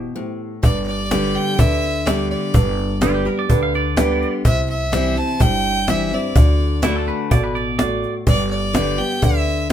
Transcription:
Already playing: B2 G4
0.15 A2 E4 G4 C5
0.63 G1 G2 D4 G4 B4 D5, cajon bass
0.87 D5, cajon slap
1.11 D3 G3 B3 D4 G4 B4, cajon slap
1.35 G5, cajon slap
1.58 D2 D3 D4 G4 B4 E5, cajon bass
1.83 cajon slap
2.06 D3 G3 B3 D4 G4 A4 D5, cajon slap
2.30 D5, cajon slap
2.54 G1 G2 D4 G4 B4, cajon bass
2.78 cajon slap
3.01 D3 G3 B3 D4 F4 G4 B4, cajon slap
3.14 G4
3.25 B3 G4 A#4, cajon slap
3.39 D5
3.49 D2 D3 D4 G4 B4, cajon bass
3.63 F5
3.74 D5, cajon slap
3.96 D3 G3 B3 D4 G4 B4, cajon slap
4.21 cajon slap
4.45 C2 C3 E4 G4 C5 E5, cajon bass
4.69 E5, cajon slap
4.92 E3 G3 C4 E4 G4 C5, cajon slap
5.16 C4 E4 A5, cajon slap
5.40 G1 G2 E4 G4 C5 G5, cajon bass
5.65 cajon slap
5.87 E3 G3 C4 E4 G4 C5 E5, cajon slap
6.11 C4 E4 D5, cajon slap
6.35 D2 D3 F#4 A4 D5, cajon bass
6.59 cajon slap
6.82 D3 A3 D4 E4 F#4 A4 D5, cajon slap
6.96 A4
7.07 B4, cajon slap
7.31 A1 B2 F#4 A4 D5, cajon bass
7.44 B4
7.55 D5, cajon slap
7.79 A2 F#4 A4 D5, cajon slap
8.03 cajon slap
8.26 G1 G2 G4 B4 D5, cajon bass
8.50 D5, cajon slap
8.73 D3 G3 B3 G4 B4 D5, cajon slap
8.98 B3 G4 G5, cajon slap
9.22 D2 D3 G4 B4 D5 E5, cajon bass
9.47 cajon slap
9.69 D3

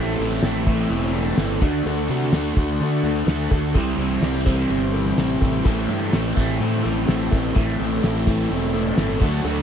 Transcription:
Already playing: A1 A2 E3 A3 C4 G4 A4 E5
0.00 E4
0.18 A1 A3 C4 E4, open hi-hat
0.31 snare
0.42 A1 A2 E3 A3 C4 E4, snare, open hi-hat, cowbell
0.67 A2 E3 A3 C4 E4, kick, open hi-hat, cowbell
0.90 E1 E3 A3 C4 E4, open hi-hat
1.14 A2 E3 A3 C4 E4, open hi-hat, cowbell
1.38 G1 A2 E3 A3 C4 E4, snare, open hi-hat, cowbell
1.61 D2 D3 A3 D4 F#4 A4 F#5, kick, cowbell, crash
1.86 D2 D3 A3 D4 F#4, cowbell
2.09 C3 A3 D4 F#4, open hi-hat
2.22 snare
2.32 D2 D3 A3 D4, snare, open hi-hat, cowbell
2.36 F#4
2.57 D2 A3 D4 F#4, kick, open hi-hat, cowbell
2.80 D3 A3 D4 F#4, open hi-hat
3.03 D2 D3 A3 D4 F#4, open hi-hat, cowbell
3.27 D2 D3 A3 D4 F#4, snare, open hi-hat, cowbell
3.50 D2 A3 D4 F#4, kick, open hi-hat, cowbell
3.74 C2 C3 E3 G3 C4 E4 G4 C5 G5, kick, open hi-hat, cowbell
3.98 C2 C4 E4, open hi-hat
4.02 G3
4.22 C2 C3 E3 G3 C4 E4, snare, open hi-hat, cowbell
4.45 C3 G3 C4 E4, kick, open hi-hat, cowbell
4.69 G1 E3 G3 C4 E4, open hi-hat
4.94 C3 E3 G3 C4 E4, open hi-hat, cowbell
5.17 A1 C3 E3 G3 C4 E4, snare, open hi-hat, cowbell
5.41 A1 G3 C4 E4, kick, open hi-hat, cowbell
5.65 A1 A2 E3 A3 C4 E4 A4 C5 G5, kick, crash, cowbell
5.88 G2 A3 C4 E4, open hi-hat
6.02 snare
6.12 A1 A2 E3 A3 C4 E4, snare, open hi-hat, cowbell
6.37 A1 A2 E3 A3 C4 E4, kick, open hi-hat, cowbell
6.59 A2 E3 A3 C4 E4, open hi-hat
6.83 A1 A2 E3 A3 C4 E4, open hi-hat, cowbell
7.06 A1 A2 E3 A3 C4 E4, snare, open hi-hat, cowbell
7.30 A1 A3 C4 E4, kick, open hi-hat, cowbell
7.53 A1 A2 E3 A3 C4 E4, kick, open hi-hat, cowbell
7.79 A1 A3 C4 E4, open hi-hat
8.02 A1 A2 E3 A3 C4 E4, snare, open hi-hat, cowbell
8.26 A2 E3 A3 C4 E4, kick, open hi-hat, cowbell
8.49 E1 E3 A3 C4 E4, open hi-hat
8.73 A2 E3 A3 C4 E4, open hi-hat, cowbell
8.97 G1 A2 E3 A3 C4 E4, snare, open hi-hat, cowbell
9.20 D2 D3 F#3 A3 D4 F#4 A4 F#5, kick, open hi-hat, cowbell
9.24 D3
9.44 D2 D3 F#3 A3 D4 F#4, cowbell, crash

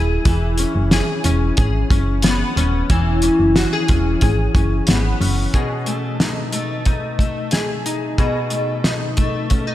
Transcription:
Already playing: D#1 A3 E4 G#4 C#5
0.25 E1 E3, kick, closed hi-hat
0.58 C#4, closed hi-hat
0.75 F#1
0.91 G#4, snare, closed hi-hat
1.24 E1 C#4, closed hi-hat
1.57 G#1 G#4, kick, closed hi-hat
1.91 F#1 C#4, kick, closed hi-hat
2.23 B3, snare, closed hi-hat
2.56 D#1 C#4, closed hi-hat
2.90 E1 E3, kick, closed hi-hat
3.22 C#4, closed hi-hat
3.39 F#1
3.56 F#4, snare, closed hi-hat
3.73 G#4
3.88 E1 C#4, kick, closed hi-hat
4.21 G#1 G#4, kick, closed hi-hat
4.55 F#1 C#4, kick, closed hi-hat
4.87 G#1 B3, snare, closed hi-hat
5.21 F#1 C#4, open hi-hat
5.54 B2 G#4, kick, closed hi-hat
5.86 A3, closed hi-hat
6.20 D#4, snare, closed hi-hat
6.53 A3, closed hi-hat
6.86 D#4, kick, closed hi-hat
7.19 A3, kick, closed hi-hat
7.51 G#4, snare, closed hi-hat
7.86 D#4, closed hi-hat
8.18 B2 G#4, kick, closed hi-hat
8.50 A3, closed hi-hat
8.84 D#4, snare, closed hi-hat
9.17 A3, kick, closed hi-hat
9.50 C#4, kick, closed hi-hat
9.67 D#4

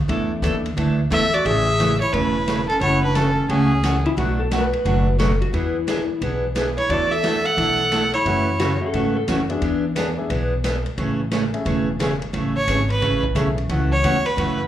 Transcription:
0.08 E2 E3 A3 B3 D4 E4 A4, ride
0.42 D#2 E3 A3 B3 D4 E4 A4, hi-hat pedal, ride
0.66 ride
0.77 D2 E3 A3 D4 E4 A4, ride
1.10 E2 E3 A3 D4 E4 A4 E5, hi-hat pedal, ride
1.33 F#4 D5, muted upright bass stroke, ride
1.45 A1 C#3 E3 A3 C#4 G#4 E5, ride
1.80 C#3 E3 A3 C#4 G#4, snare, hi-hat pedal, ride
2.01 E4 C#5, ride
2.13 E1 C#3 E3 A3 C#4 E4 G#4 B4, ride
2.47 C#3 E3 A3 C#4 G#4, snare, hi-hat pedal, ride
2.69 C#4 A4, ride
2.81 F#1 C#3 E3 A3 C#4 E4 F#4 C#5, ride
3.03 D4 B4
3.15 C#3 E3 A3 C#4 F#4 A4, snare, hi-hat pedal, ride
3.49 C#2 C#3 E3 A3 C#4 F#4 G#4, ride
3.83 C#3 E3 A3 C#4 F#4, snare, hi-hat pedal, ride
4.06 E4, ride
4.17 B1 B2 F#3 A3 D4 F#4, ride
4.39 A4
4.51 B2 F#3 A3 D4 F#4 B4, snare, hi-hat pedal, ride
4.73 ride
4.85 F#1 B2 F#3 A3 D4 F#4, ride
5.19 B2 F#3 A3 D4 F#4 A4, snare, hi-hat pedal, ride
5.42 F#4, ride
5.53 E2 E3 B3 D4 E4 G#4, ride
5.87 E3 B3 D4 G#4, snare, hi-hat pedal, ride
6.21 B1 E3 B3 D4 G#4, ride
6.55 E3 B3 D4 G#4, snare, hi-hat pedal, ride
6.78 E4 C#5, ride
6.89 E2 E3 A3 D4 E4 F#4 A4 D5, ride
7.12 A4 E5
7.23 E3 A3 D4 E4 F#4 A4, snare, hi-hat pedal, ride
7.45 A4 F#5, ride
7.57 B1 E3 A3 D4 E4 A4, ride
7.91 E3 A3 D4 E4 A4, snare, hi-hat pedal, ride
8.13 E4 C#5, ride
8.25 F#2 C#3 E3 A3 C#4 E4 F#4, ride
8.59 C#3 E3 A3 C#4 F#4, snare, hi-hat pedal, ride
8.81 A3 C#4 E4 F#4 A4
8.93 G#2 C#3 E3 A3 C#4 F#4, ride
9.16 A4
9.28 F#2 C#3 E3 A3 C#4 F#4, snare, hi-hat pedal, ride
9.49 B3 D4 E4 G#4, ride
9.62 E2 E3 B3 D4 G#4, ride
9.96 E3 B3 D4 G#4, snare, hi-hat pedal, ride
10.17 B3 D4 E4 G#4
10.30 B1 E3 B3 D4 G#4, ride
10.64 E3 B3 D4 G#4, snare, hi-hat pedal, ride
10.86 ride
10.98 A1 C#3 E3 A3 C#4 G#4, ride
11.31 C#3 E3 A3 C#4 G#4, snare, hi-hat pedal, ride
11.53 A3 C#4 E4 G#4, ride
11.65 E1 C#3 E3 A3 C#4 G#4, ride
11.99 C#3 E3 A3 C#4 G#4, snare, hi-hat pedal, ride
12.22 ride
12.33 A1 C#3 E3 A3 C#4 G#4, ride
12.57 C#5
12.67 G#1 C#3 E3 A3 C#4 G#4, hi-hat pedal, ride
12.90 B4, ride
13.01 A1 C#3 E3 A3 C#4 G#4, ride
13.23 kick
13.35 B1 C#3 E3 A3 C#4 E4 G#4 A4, hi-hat pedal, ride
13.58 ride
13.69 C#2 C#3 E3 A3 C#4 F#4, ride
13.92 C#5
14.03 E2 C#3 E3 A3 C#4 F#4, hi-hat pedal, ride
14.26 B4, ride
14.37 F#2 C#3 E3 A3 C#4 F#4, ride

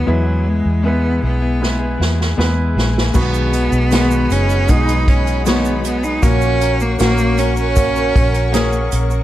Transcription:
Already playing: B3
0.06 E2 E3 F#3 G#3 B3 E4 G#4 B4
0.25 B3 E4 G#4
0.48 G#3
0.66 E2
0.83 E3 G#3 B3 E4 G#4 B4
1.21 B1 G#3 B3 E4 G#4
1.40 B3 E4 G#4
1.61 G#3 B3 E4 B4, snare
1.79 B3 E4 G#4
1.98 E2 G#3 B3 E4 G#4, snare
2.21 snare
2.36 E2 E3 G#3 B3 E4 G#4 B4, snare
2.75 A#1 G#3 B3 E4 G#4, snare
2.94 B3 E4 G#4, snare
3.14 B1 B2 D#3 F#3 G#3 B3 D#4 F#4 G#4 B4 D#5 F#5 B5, kick, crash, shaker
3.34 shaker
3.52 F#3 B3 D#4 G#4, closed hi-hat, shaker
3.72 B1, shaker
3.91 B2 D#3 F#3 G#3 B3 D#4 F#4 G#4 B4, snare, closed hi-hat, shaker
4.11 shaker
4.29 F#1 F#3 B3 C#4 D#4 G#4, closed hi-hat, shaker
4.49 F#3 B3 D#4 G#4, shaker
4.68 B1 G#3 B3 D#4 F#4 G#4, kick, closed hi-hat, shaker
4.87 F#3 B3 D#4 G#4, closed hi-hat, shaker
5.08 C#4, kick, closed hi-hat
5.25 F#3 B3 D#4 G#4, closed hi-hat, shaker
5.45 B2 D#3 F#3 G#3 B3 D#4 F#4 G#4 C#5, snare, closed hi-hat, shaker
5.65 shaker
5.82 F#3 B3 D#4 G#4, closed hi-hat, shaker
6.02 F#3 B3 D#4 G#4, shaker
6.22 A#1 A#2 A#3 C#4 F#4 A#4 C#5 C#6, kick, closed hi-hat, shaker
6.41 shaker
6.60 A#3 C#4 F#4 A#4, closed hi-hat, shaker
6.80 A#3, shaker
6.99 A#1 A#3 C#4 F#4 A#4, snare, closed hi-hat, shaker
7.18 shaker
7.36 A#3 C#4 F#4 A#4, closed hi-hat, shaker
7.56 C#4 F#4 A#4, shaker
7.76 A#3 C#4 F#4, kick, closed hi-hat, shaker
7.94 C#4 F#4 A#4, shaker
8.16 A#1, kick, closed hi-hat
8.33 C#4 F#4 A#4, closed hi-hat, shaker
8.52 A#3 C#4 F#4 G#4 A#4, snare, closed hi-hat, shaker
8.73 shaker
8.91 A#1 A#3 C#4 F#4 A#4, closed hi-hat, shaker
9.10 C#4 F#4 A#4, shaker

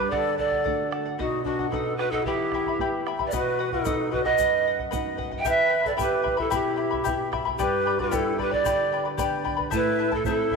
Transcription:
Already playing: G3 B3 D4 G4 B4
0.00 B4 D5 B5
0.10 D3 A4 D5 F#5, bombo low
0.38 A4 D5 F#5, bombo low
0.51 D5 F#5, bombo low
0.64 A3 D4 F#4 A4 D5 F#5, bombo low
0.91 A4 D5 F#5, bombo rim
1.05 D5 F#5
1.19 B2 D#4 F#4 B4 D#5 F#5, bombo low
1.44 D4 F#4 B4 D#5 F#5, bombo low
1.59 D#5 F#5, bombo low
1.69 B3 D#4 F#4 A4 B4 D#5, bombo low
1.74 F#5
1.97 F#4 B4 D#5 F#5, bombo rim
2.10 D#4 A4 D#5 F#5, bombo low
2.23 E3 E4 G4, bombo low
2.27 E4 E5 G5 B5
2.52 E4 E5 G5 B5, bombo rim, bombo low
2.66 E4 E5 B5, bombo low
2.79 B3 E4 G4 E5 G5 B5, bombo low
3.06 E4 E5 G5 B5, bombo rim
3.19 E4 E5 B5, bombo low
3.26 B4 D5
3.32 B2 F#4 B4 D#5 F#5, bombo low, shaker
3.59 B4 D#5 F#5
3.72 D#4 A4 D#5 F#5, bombo low
3.85 B3 D#4 F#4 B4 D#5 F#5, bombo low, shaker
4.11 F#4 B4 D#5 F#5, bombo low
4.24 B4 D#5 F#5, bombo low
4.38 F#2 B4 D#5 F#5, bombo low, shaker
4.66 B4 D#5 F#5
4.79 D#5 F#5, bombo low
4.91 B3 D#4 F#4 B4 D#5 F#5, bombo low, shaker
5.17 B4 D#5 F#5, bombo low
5.31 D#5 F#5, bombo low
5.38 E5 G5
5.44 E3 E4 G4 B4 E5 G5 B5, bombo low, shaker
5.69 E4 E5 G5 B5
5.84 E4 A4 D5 E5 B5, bombo low
5.97 B3 E4 G4 E5 G5 B5, bombo low, shaker
6.01 B4
6.22 E4 E5 G5 B5, bombo low
6.37 E4 A4 E5 B5, bombo low
6.50 B2 E4 G4 E5 G5 B5, bombo low, shaker
6.76 E4 E5 G5 B5
6.91 E4 E5 B5, bombo low
7.04 B3 E4 G4 E5 G5 B5, bombo low, shaker
7.32 E4 E5 G5 B5, bombo rim, bombo low
7.45 E4 E5 B5, bombo low
7.57 G2 G4 B4 D5 G5 B5, bombo low, shaker
7.86 B4 D5 G5 B5
7.99 E4 A4 B4 D5 B5, bombo low
8.11 B3 D4 G4 B4 D5 G5 B5, bombo low, shaker
8.38 G4 B4 D5 G5 B5, bombo low
8.51 G4 B4 D5 B5, bombo low
8.65 D3 G4 B4 D5 G5 B5, bombo low, shaker
8.92 B4 D5 G5 B5
9.05 B4 D5 B5
9.17 B3 D4 G4 B4 D5 G5 B5, bombo low, shaker
9.44 B4 D5 G5 B5, bombo low
9.57 B4 D5 B5, bombo low
9.70 A2 E4 A4 B4 C5 E5 A5, bombo low, shaker
9.98 E4 A4 E5 A5
10.11 E4 A4 A5, bombo low
10.25 A3 C4 E4 A4 C5 E5 A5, bombo low, shaker
10.51 E5, bombo low

